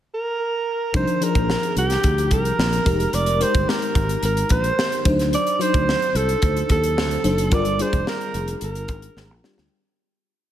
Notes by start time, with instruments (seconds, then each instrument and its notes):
0.14 alto saxophone A#4
0.93 fretless electric bass C2, fm electric piano F3 D4 D#4 A#4, alto saxophone C5, kick, closed hi-hat
1.07 closed hi-hat
1.21 fm electric piano F3 D4 D#4 G#4, alto saxophone A#4, closed hi-hat
1.29 fm electric piano A#4
1.35 fretless electric bass A#1, kick, closed hi-hat
1.50 snare
1.63 closed hi-hat
1.76 fretless electric bass C2, alto saxophone G4, closed hi-hat
1.90 snare, closed hi-hat
2.03 fretless electric bass D2, kick, closed hi-hat
2.18 closed hi-hat
2.31 fretless electric bass C2, alto saxophone A#4, kick, closed hi-hat
2.45 closed hi-hat
2.59 fretless electric bass A#1, snare
2.73 closed hi-hat
2.85 fretless electric bass F1, fm electric piano G#3 D#4 G4 A#4, kick, closed hi-hat
3.00 closed hi-hat
3.13 fretless electric bass F1, alto saxophone D5, closed hi-hat
3.26 closed hi-hat
3.40 fm electric piano G#3 D#4 G4 A#4, alto saxophone C5, closed hi-hat
3.54 fretless electric bass G1, kick, closed hi-hat
3.69 alto saxophone A#4, snare
3.82 closed hi-hat
3.95 fretless electric bass G#1, kick, closed hi-hat
4.09 closed hi-hat
4.23 fretless electric bass G#1, alto saxophone A#4, closed hi-hat
4.37 closed hi-hat
4.49 fretless electric bass A#1, alto saxophone C5, kick, closed hi-hat
4.64 closed hi-hat
4.79 snare
4.92 closed hi-hat
5.05 fretless electric bass D2, fm electric piano F#3 D4 D#4 C5, kick, closed hi-hat
5.19 snare, closed hi-hat
5.33 alto saxophone D5, closed hi-hat
5.47 closed hi-hat
5.59 fm electric piano F#3 D4 D#4 C5, alto saxophone C5, closed hi-hat
5.74 fretless electric bass D2, kick, closed hi-hat
5.89 snare
6.02 closed hi-hat
6.15 fretless electric bass C2, alto saxophone A4, closed hi-hat
6.29 closed hi-hat
6.42 fretless electric bass D2, kick, closed hi-hat
6.57 closed hi-hat
6.69 fretless electric bass D#2, alto saxophone A4, kick, closed hi-hat
6.84 closed hi-hat
6.97 fretless electric bass D2, snare
7.11 closed hi-hat
7.23 fretless electric bass F#1, fm electric piano F#3 D4 D#4 C5, closed hi-hat
7.38 closed hi-hat
7.51 fretless electric bass G1, fm electric piano G3 D4 F4 A#4, alto saxophone D5, kick, closed hi-hat
7.65 closed hi-hat
7.78 fm electric piano G3 D4 F4 G#4, alto saxophone C5, closed hi-hat
7.86 fm electric piano A#4
7.93 fretless electric bass F1, kick, closed hi-hat
8.07 alto saxophone A#4, snare
8.21 closed hi-hat
8.34 fretless electric bass F1, closed hi-hat
8.48 closed hi-hat
8.61 fretless electric bass G1, alto saxophone A#4, closed hi-hat
8.75 closed hi-hat
8.88 fretless electric bass G#1, kick, closed hi-hat
9.02 closed hi-hat
9.16 fretless electric bass G#1, snare
9.31 fretless electric bass A#1
9.43 fm electric piano G3 D4 F4 G4, snare
9.58 fretless electric bass D2, snare